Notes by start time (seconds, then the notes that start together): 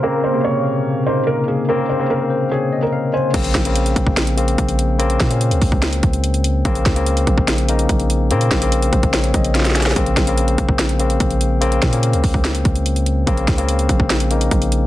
Already playing: A#2 A#4
0.02 C#3 A#3 C4 A#4
0.24 C5
0.33 C3 C#3 A#3
0.44 C#5
1.06 C#3 A#3 D#4 C5
1.27 A#4
1.48 G#4
1.68 C#3 A#3 C4 A#4
1.89 C5
1.99 C#3 A#3 C4
2.10 A#4
2.30 C5
2.51 G#4 C#5
2.73 D#5
2.83 A#4
2.92 F5
3.14 C5 G#5
3.34 A#1 C#3 A#3 C4, kick, closed hi-hat, crash
3.44 closed hi-hat
3.55 A#1, kick, snare, closed hi-hat
3.65 C#3 A#3 C4, closed hi-hat
3.76 closed hi-hat
3.86 closed hi-hat
3.96 A#1, kick, closed hi-hat
4.07 kick
4.17 snare, closed hi-hat
4.27 closed hi-hat
4.37 C#3 A#3 C4, closed hi-hat
4.48 closed hi-hat
4.58 A#1, kick, closed hi-hat
4.69 closed hi-hat
4.79 closed hi-hat
4.98 C#3 A#3 C4, closed hi-hat
5.10 closed hi-hat
5.20 A#2, kick, snare, closed hi-hat
5.30 C#3 A#3 C#4, closed hi-hat
5.41 closed hi-hat
5.51 C#2, closed hi-hat
5.62 C#2, kick, open hi-hat
5.72 kick
5.82 snare, closed hi-hat
5.93 closed hi-hat
6.03 C#2, kick, closed hi-hat
6.13 closed hi-hat
6.24 closed hi-hat
6.34 closed hi-hat
6.44 closed hi-hat
6.65 A#1 C#3 A#3 C4, kick, closed hi-hat
6.75 closed hi-hat
6.86 C#2, kick, snare, closed hi-hat
6.95 C#3 A#3 C4, closed hi-hat
7.06 closed hi-hat
7.17 closed hi-hat
7.27 A#1, kick, closed hi-hat
7.38 kick
7.48 snare, closed hi-hat
7.58 closed hi-hat
7.68 C#3 A#3 D#4, closed hi-hat
7.79 closed hi-hat
7.89 A#1, kick, closed hi-hat
8.00 closed hi-hat
8.10 closed hi-hat
8.31 A#2 C#3 A#3 C4, closed hi-hat
8.41 closed hi-hat
8.51 A#1, kick, snare, closed hi-hat
8.61 C#3 A#3 C4, closed hi-hat
8.72 closed hi-hat
8.82 closed hi-hat
8.92 A#1 C5, kick, closed hi-hat, open hi-hat
9.03 kick, closed hi-hat
9.13 C#5, snare, closed hi-hat
9.24 closed hi-hat
9.34 A#1 D#5, kick, closed hi-hat
9.45 closed hi-hat
9.55 F5, snare, closed hi-hat
9.60 snare
9.65 snare, closed hi-hat
9.70 snare
9.75 G#5, snare, closed hi-hat
9.81 snare, closed hi-hat
9.86 snare, closed hi-hat
9.91 snare
9.96 A#1 C#3 A#3 C4, kick, closed hi-hat
10.06 closed hi-hat
10.17 A#1, kick, snare, closed hi-hat
10.27 C#3 A#3 C4, closed hi-hat
10.38 closed hi-hat
10.48 closed hi-hat
10.58 A#1, kick, closed hi-hat
10.69 kick
10.79 snare, closed hi-hat
10.89 closed hi-hat
10.99 C#3 A#3 C4, closed hi-hat
11.10 closed hi-hat
11.20 A#1, kick, closed hi-hat
11.31 closed hi-hat
11.41 closed hi-hat
11.60 C#3 A#3 C4, closed hi-hat
11.72 closed hi-hat
11.82 A#2, kick, snare, closed hi-hat
11.92 C#3 A#3 C#4, closed hi-hat
12.03 closed hi-hat
12.13 C#2, closed hi-hat
12.24 C#2, kick, open hi-hat
12.34 kick
12.44 snare, closed hi-hat
12.55 closed hi-hat
12.65 C#2, kick, closed hi-hat
12.76 closed hi-hat
12.86 closed hi-hat
12.96 closed hi-hat
13.06 closed hi-hat
13.27 A#1 C#3 A#3 C4, kick, closed hi-hat
13.37 closed hi-hat
13.48 C#2, kick, snare, closed hi-hat
13.58 C#3 A#3 C4, closed hi-hat
13.69 closed hi-hat
13.79 closed hi-hat
13.89 A#1, kick, closed hi-hat
14.00 kick
14.10 snare, closed hi-hat
14.20 closed hi-hat
14.30 C#3 A#3 D#4, closed hi-hat
14.41 closed hi-hat
14.51 A#1, kick, closed hi-hat
14.62 closed hi-hat
14.72 closed hi-hat